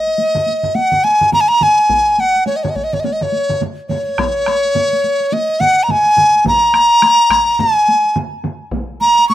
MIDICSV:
0, 0, Header, 1, 3, 480
1, 0, Start_track
1, 0, Tempo, 572519
1, 1596, Time_signature, 4, 2, 24, 8
1, 3990, Tempo, 566038
1, 7877, End_track
2, 0, Start_track
2, 0, Title_t, "Dizi"
2, 0, Program_c, 0, 73
2, 0, Note_on_c, 0, 75, 66
2, 628, Note_on_c, 0, 78, 77
2, 640, Note_off_c, 0, 75, 0
2, 870, Note_on_c, 0, 80, 81
2, 883, Note_off_c, 0, 78, 0
2, 1110, Note_off_c, 0, 80, 0
2, 1115, Note_on_c, 0, 82, 90
2, 1178, Note_on_c, 0, 80, 80
2, 1190, Note_off_c, 0, 82, 0
2, 1242, Note_on_c, 0, 82, 93
2, 1255, Note_off_c, 0, 80, 0
2, 1365, Note_on_c, 0, 80, 79
2, 1377, Note_off_c, 0, 82, 0
2, 1844, Note_on_c, 0, 78, 78
2, 1856, Note_off_c, 0, 80, 0
2, 2063, Note_off_c, 0, 78, 0
2, 2068, Note_on_c, 0, 73, 57
2, 2147, Note_on_c, 0, 75, 59
2, 2160, Note_off_c, 0, 73, 0
2, 2208, Note_on_c, 0, 73, 47
2, 2221, Note_off_c, 0, 75, 0
2, 2258, Note_on_c, 0, 75, 50
2, 2271, Note_off_c, 0, 73, 0
2, 2310, Note_on_c, 0, 73, 58
2, 2323, Note_off_c, 0, 75, 0
2, 2379, Note_on_c, 0, 75, 58
2, 2392, Note_off_c, 0, 73, 0
2, 2460, Note_on_c, 0, 73, 47
2, 2472, Note_off_c, 0, 75, 0
2, 2513, Note_on_c, 0, 75, 49
2, 2526, Note_off_c, 0, 73, 0
2, 2551, Note_on_c, 0, 73, 55
2, 2563, Note_off_c, 0, 75, 0
2, 2621, Note_on_c, 0, 75, 52
2, 2633, Note_off_c, 0, 73, 0
2, 2705, Note_on_c, 0, 73, 68
2, 2717, Note_off_c, 0, 75, 0
2, 3035, Note_off_c, 0, 73, 0
2, 3259, Note_on_c, 0, 73, 74
2, 4473, Note_on_c, 0, 75, 81
2, 4486, Note_off_c, 0, 73, 0
2, 4703, Note_on_c, 0, 78, 82
2, 4716, Note_off_c, 0, 75, 0
2, 4900, Note_on_c, 0, 82, 61
2, 4912, Note_off_c, 0, 78, 0
2, 4963, Note_on_c, 0, 80, 91
2, 4976, Note_off_c, 0, 82, 0
2, 5440, Note_off_c, 0, 80, 0
2, 5446, Note_on_c, 0, 82, 97
2, 6401, Note_on_c, 0, 80, 76
2, 6414, Note_off_c, 0, 82, 0
2, 6878, Note_off_c, 0, 80, 0
2, 7592, Note_on_c, 0, 82, 89
2, 7815, Note_off_c, 0, 82, 0
2, 7831, Note_on_c, 0, 85, 104
2, 7877, Note_off_c, 0, 85, 0
2, 7877, End_track
3, 0, Start_track
3, 0, Title_t, "Taiko and cinematic ensemble drums"
3, 57, Note_on_c, 9, 48, 21
3, 141, Note_off_c, 9, 48, 0
3, 151, Note_on_c, 9, 48, 63
3, 235, Note_off_c, 9, 48, 0
3, 292, Note_on_c, 9, 47, 88
3, 296, Note_on_c, 9, 48, 42
3, 297, Note_on_c, 9, 45, 93
3, 376, Note_off_c, 9, 47, 0
3, 380, Note_off_c, 9, 48, 0
3, 381, Note_off_c, 9, 45, 0
3, 389, Note_on_c, 9, 48, 50
3, 473, Note_off_c, 9, 48, 0
3, 531, Note_on_c, 9, 47, 87
3, 538, Note_on_c, 9, 45, 83
3, 615, Note_off_c, 9, 47, 0
3, 622, Note_off_c, 9, 45, 0
3, 628, Note_on_c, 9, 48, 67
3, 711, Note_off_c, 9, 48, 0
3, 770, Note_on_c, 9, 47, 91
3, 780, Note_on_c, 9, 45, 83
3, 854, Note_off_c, 9, 47, 0
3, 863, Note_off_c, 9, 45, 0
3, 875, Note_on_c, 9, 48, 53
3, 959, Note_off_c, 9, 48, 0
3, 1016, Note_on_c, 9, 47, 83
3, 1018, Note_on_c, 9, 45, 93
3, 1100, Note_off_c, 9, 47, 0
3, 1101, Note_off_c, 9, 45, 0
3, 1109, Note_on_c, 9, 47, 88
3, 1112, Note_on_c, 9, 48, 62
3, 1113, Note_on_c, 9, 45, 83
3, 1193, Note_off_c, 9, 47, 0
3, 1196, Note_off_c, 9, 48, 0
3, 1197, Note_off_c, 9, 45, 0
3, 1257, Note_on_c, 9, 48, 21
3, 1341, Note_off_c, 9, 48, 0
3, 1349, Note_on_c, 9, 47, 92
3, 1351, Note_on_c, 9, 48, 55
3, 1353, Note_on_c, 9, 45, 86
3, 1433, Note_off_c, 9, 47, 0
3, 1435, Note_off_c, 9, 48, 0
3, 1437, Note_off_c, 9, 45, 0
3, 1501, Note_on_c, 9, 48, 20
3, 1585, Note_off_c, 9, 48, 0
3, 1589, Note_on_c, 9, 41, 87
3, 1589, Note_on_c, 9, 48, 66
3, 1673, Note_off_c, 9, 41, 0
3, 1673, Note_off_c, 9, 48, 0
3, 1741, Note_on_c, 9, 48, 20
3, 1825, Note_off_c, 9, 48, 0
3, 1831, Note_on_c, 9, 48, 50
3, 1915, Note_off_c, 9, 48, 0
3, 1976, Note_on_c, 9, 48, 22
3, 2060, Note_off_c, 9, 48, 0
3, 2071, Note_on_c, 9, 48, 65
3, 2154, Note_off_c, 9, 48, 0
3, 2215, Note_on_c, 9, 48, 45
3, 2219, Note_on_c, 9, 45, 96
3, 2220, Note_on_c, 9, 47, 93
3, 2299, Note_off_c, 9, 48, 0
3, 2303, Note_off_c, 9, 45, 0
3, 2304, Note_off_c, 9, 47, 0
3, 2310, Note_on_c, 9, 41, 66
3, 2317, Note_on_c, 9, 48, 48
3, 2394, Note_off_c, 9, 41, 0
3, 2401, Note_off_c, 9, 48, 0
3, 2458, Note_on_c, 9, 47, 89
3, 2463, Note_on_c, 9, 48, 21
3, 2464, Note_on_c, 9, 45, 80
3, 2541, Note_off_c, 9, 47, 0
3, 2547, Note_off_c, 9, 48, 0
3, 2548, Note_off_c, 9, 45, 0
3, 2551, Note_on_c, 9, 48, 76
3, 2635, Note_off_c, 9, 48, 0
3, 2692, Note_on_c, 9, 48, 23
3, 2694, Note_on_c, 9, 45, 85
3, 2698, Note_on_c, 9, 47, 85
3, 2776, Note_off_c, 9, 48, 0
3, 2777, Note_off_c, 9, 45, 0
3, 2782, Note_off_c, 9, 47, 0
3, 2785, Note_on_c, 9, 48, 56
3, 2869, Note_off_c, 9, 48, 0
3, 2930, Note_on_c, 9, 47, 84
3, 2933, Note_on_c, 9, 48, 21
3, 2935, Note_on_c, 9, 45, 93
3, 3014, Note_off_c, 9, 47, 0
3, 3017, Note_off_c, 9, 48, 0
3, 3019, Note_off_c, 9, 45, 0
3, 3028, Note_on_c, 9, 47, 95
3, 3032, Note_on_c, 9, 48, 65
3, 3036, Note_on_c, 9, 45, 87
3, 3112, Note_off_c, 9, 47, 0
3, 3115, Note_off_c, 9, 48, 0
3, 3120, Note_off_c, 9, 45, 0
3, 3265, Note_on_c, 9, 47, 91
3, 3275, Note_on_c, 9, 48, 57
3, 3280, Note_on_c, 9, 45, 90
3, 3348, Note_off_c, 9, 47, 0
3, 3359, Note_off_c, 9, 48, 0
3, 3364, Note_off_c, 9, 45, 0
3, 3423, Note_on_c, 9, 48, 24
3, 3506, Note_on_c, 9, 37, 69
3, 3507, Note_off_c, 9, 48, 0
3, 3509, Note_on_c, 9, 41, 95
3, 3513, Note_off_c, 9, 37, 0
3, 3513, Note_on_c, 9, 37, 74
3, 3517, Note_on_c, 9, 48, 80
3, 3593, Note_off_c, 9, 41, 0
3, 3597, Note_off_c, 9, 37, 0
3, 3601, Note_off_c, 9, 48, 0
3, 3743, Note_on_c, 9, 37, 61
3, 3752, Note_on_c, 9, 48, 53
3, 3755, Note_off_c, 9, 37, 0
3, 3755, Note_on_c, 9, 37, 60
3, 3836, Note_off_c, 9, 48, 0
3, 3838, Note_off_c, 9, 37, 0
3, 3895, Note_on_c, 9, 48, 24
3, 3979, Note_off_c, 9, 48, 0
3, 3983, Note_on_c, 9, 47, 83
3, 3990, Note_on_c, 9, 45, 86
3, 3990, Note_on_c, 9, 48, 72
3, 4068, Note_off_c, 9, 47, 0
3, 4075, Note_off_c, 9, 45, 0
3, 4075, Note_off_c, 9, 48, 0
3, 4134, Note_on_c, 9, 48, 51
3, 4218, Note_off_c, 9, 48, 0
3, 4228, Note_on_c, 9, 48, 51
3, 4313, Note_off_c, 9, 48, 0
3, 4368, Note_on_c, 9, 48, 22
3, 4453, Note_off_c, 9, 48, 0
3, 4467, Note_on_c, 9, 48, 79
3, 4552, Note_off_c, 9, 48, 0
3, 4615, Note_on_c, 9, 48, 23
3, 4700, Note_off_c, 9, 48, 0
3, 4706, Note_on_c, 9, 48, 62
3, 4710, Note_on_c, 9, 47, 89
3, 4715, Note_on_c, 9, 45, 87
3, 4791, Note_off_c, 9, 48, 0
3, 4795, Note_off_c, 9, 47, 0
3, 4800, Note_off_c, 9, 45, 0
3, 4945, Note_on_c, 9, 48, 66
3, 4952, Note_on_c, 9, 47, 88
3, 4959, Note_on_c, 9, 45, 96
3, 5030, Note_off_c, 9, 48, 0
3, 5037, Note_off_c, 9, 47, 0
3, 5044, Note_off_c, 9, 45, 0
3, 5091, Note_on_c, 9, 48, 20
3, 5175, Note_off_c, 9, 48, 0
3, 5185, Note_on_c, 9, 48, 62
3, 5190, Note_on_c, 9, 45, 94
3, 5193, Note_on_c, 9, 47, 90
3, 5270, Note_off_c, 9, 48, 0
3, 5275, Note_off_c, 9, 45, 0
3, 5278, Note_off_c, 9, 47, 0
3, 5334, Note_on_c, 9, 48, 21
3, 5418, Note_off_c, 9, 48, 0
3, 5421, Note_on_c, 9, 48, 75
3, 5429, Note_on_c, 9, 41, 97
3, 5430, Note_on_c, 9, 47, 92
3, 5431, Note_on_c, 9, 45, 99
3, 5506, Note_off_c, 9, 48, 0
3, 5514, Note_off_c, 9, 41, 0
3, 5515, Note_off_c, 9, 45, 0
3, 5515, Note_off_c, 9, 47, 0
3, 5569, Note_on_c, 9, 48, 21
3, 5654, Note_off_c, 9, 48, 0
3, 5665, Note_on_c, 9, 48, 50
3, 5669, Note_on_c, 9, 37, 73
3, 5749, Note_off_c, 9, 48, 0
3, 5754, Note_off_c, 9, 37, 0
3, 5909, Note_on_c, 9, 37, 68
3, 5910, Note_off_c, 9, 37, 0
3, 5910, Note_on_c, 9, 37, 66
3, 5910, Note_on_c, 9, 48, 63
3, 5995, Note_off_c, 9, 37, 0
3, 5995, Note_off_c, 9, 48, 0
3, 6144, Note_on_c, 9, 41, 75
3, 6149, Note_on_c, 9, 37, 72
3, 6153, Note_on_c, 9, 48, 48
3, 6155, Note_off_c, 9, 37, 0
3, 6155, Note_on_c, 9, 37, 71
3, 6229, Note_off_c, 9, 41, 0
3, 6238, Note_off_c, 9, 48, 0
3, 6240, Note_off_c, 9, 37, 0
3, 6304, Note_on_c, 9, 48, 22
3, 6389, Note_off_c, 9, 48, 0
3, 6391, Note_on_c, 9, 47, 87
3, 6393, Note_on_c, 9, 45, 100
3, 6394, Note_on_c, 9, 48, 65
3, 6476, Note_off_c, 9, 47, 0
3, 6478, Note_off_c, 9, 45, 0
3, 6479, Note_off_c, 9, 48, 0
3, 6542, Note_on_c, 9, 48, 22
3, 6627, Note_off_c, 9, 48, 0
3, 6639, Note_on_c, 9, 48, 55
3, 6724, Note_off_c, 9, 48, 0
3, 6780, Note_on_c, 9, 48, 21
3, 6865, Note_off_c, 9, 48, 0
3, 6873, Note_on_c, 9, 45, 99
3, 6873, Note_on_c, 9, 47, 98
3, 6877, Note_on_c, 9, 48, 63
3, 6958, Note_off_c, 9, 45, 0
3, 6958, Note_off_c, 9, 47, 0
3, 6962, Note_off_c, 9, 48, 0
3, 7019, Note_on_c, 9, 48, 18
3, 7103, Note_off_c, 9, 48, 0
3, 7111, Note_on_c, 9, 45, 95
3, 7114, Note_on_c, 9, 48, 54
3, 7117, Note_on_c, 9, 47, 93
3, 7196, Note_off_c, 9, 45, 0
3, 7199, Note_off_c, 9, 48, 0
3, 7202, Note_off_c, 9, 47, 0
3, 7263, Note_on_c, 9, 48, 19
3, 7344, Note_on_c, 9, 41, 99
3, 7347, Note_off_c, 9, 48, 0
3, 7358, Note_on_c, 9, 48, 74
3, 7429, Note_off_c, 9, 41, 0
3, 7442, Note_off_c, 9, 48, 0
3, 7499, Note_on_c, 9, 48, 19
3, 7584, Note_off_c, 9, 48, 0
3, 7594, Note_on_c, 9, 48, 46
3, 7679, Note_off_c, 9, 48, 0
3, 7741, Note_on_c, 9, 48, 23
3, 7826, Note_off_c, 9, 48, 0
3, 7839, Note_on_c, 9, 48, 64
3, 7877, Note_off_c, 9, 48, 0
3, 7877, End_track
0, 0, End_of_file